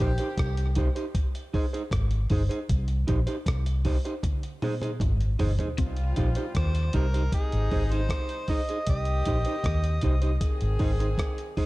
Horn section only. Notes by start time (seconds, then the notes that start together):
Already playing: D#3 C4 G4
5.78 C3 G3 F4
7.33 C3 G#3 D#4
8.87 D#3 C4 G4
10.41 D#3 C4 G#4